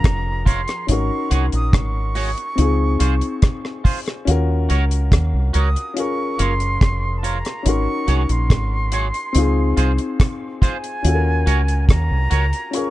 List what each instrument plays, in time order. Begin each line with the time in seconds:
Already playing: grand piano F3 C#4 G#4 A#4, flute A#5
0.04 fingered electric bass F1, kick, cross-stick, closed hi-hat
0.46 clean electric guitar F4 A#4 C#5, flute C6, kick, closed hi-hat
0.68 cross-stick, closed hi-hat
0.87 fingered electric bass G#1, grand piano C#4 D#4, flute C#6, closed hi-hat
0.91 grand piano F#4 A#4
1.30 fingered electric bass C2, clean electric guitar F#4 G#4 C#5, closed hi-hat
1.52 fingered electric bass A#1, flute D#6, closed hi-hat
1.73 fingered electric bass G#1, flute C#6, kick, cross-stick, closed hi-hat
2.15 clean electric guitar F#4 G#4 C#5, open hi-hat
2.38 closed hi-hat
2.55 fingered electric bass C#2, grand piano C4 D#4 F4, closed hi-hat
2.61 grand piano G#4
3.00 fingered electric bass C2, clean electric guitar F4 G#4 C5, closed hi-hat
3.21 closed hi-hat
3.42 kick, cross-stick, closed hi-hat
3.65 cross-stick
3.84 clean electric guitar F4 G#4 C5, kick, open hi-hat
4.06 cross-stick, closed hi-hat
4.25 fingered electric bass D#2, grand piano C#4 F4, closed hi-hat
4.29 grand piano F#4 A#4
4.69 fingered electric bass C#2, clean electric guitar F#4 A#4 C#5, closed hi-hat
4.91 closed hi-hat
5.12 fingered electric bass D#2, kick, cross-stick, closed hi-hat
5.34 fingered electric bass C2
5.53 fingered electric bass C#2, clean electric guitar F#4 A#4 C#5, flute D#6, closed hi-hat
5.76 closed hi-hat
5.94 grand piano C#4 F4 G#4, closed hi-hat
5.99 grand piano A#4, flute C#6
6.39 fingered electric bass F#1, clean electric guitar F4 A#4 C#5, flute C6, closed hi-hat
6.60 closed hi-hat
6.81 fingered electric bass F1, kick, cross-stick, closed hi-hat
7.18 flute A5
7.23 clean electric guitar F4 A#4 C#5, flute A#5, closed hi-hat
7.45 cross-stick, closed hi-hat
7.63 fingered electric bass G#1, grand piano C#4 D#4, closed hi-hat
7.67 grand piano F#4 A#4, flute C#6
8.07 fingered electric bass C2, clean electric guitar F#4 G#4 C#5, closed hi-hat
8.29 fingered electric bass A#1, flute C6, closed hi-hat
8.50 fingered electric bass G#1, kick, cross-stick, closed hi-hat
8.92 clean electric guitar F#4 G#4 C#5, closed hi-hat
9.14 closed hi-hat
9.33 fingered electric bass C#2, grand piano C4 D#4, closed hi-hat
9.37 grand piano F4 G#4
9.77 fingered electric bass C2, clean electric guitar F4 G#4 C5, closed hi-hat
9.98 closed hi-hat
10.20 kick, cross-stick, closed hi-hat
10.62 clean electric guitar F4 G#4 C5, flute G#5, kick, closed hi-hat
10.84 closed hi-hat
11.03 fingered electric bass D#2, grand piano C#4 F4, closed hi-hat
11.07 grand piano F#4 A4
11.15 grand piano A#4
11.46 fingered electric bass C#2, clean electric guitar F#4 A#4 C#5, closed hi-hat
11.68 closed hi-hat
11.89 fingered electric bass D#2, flute A#5, kick, cross-stick, closed hi-hat
12.11 fingered electric bass C2
12.30 fingered electric bass C#2, clean electric guitar F#4 A#4 C#5, closed hi-hat
12.53 closed hi-hat
12.71 grand piano C#4 F4, flute C#6, closed hi-hat
12.75 grand piano G#4 A#4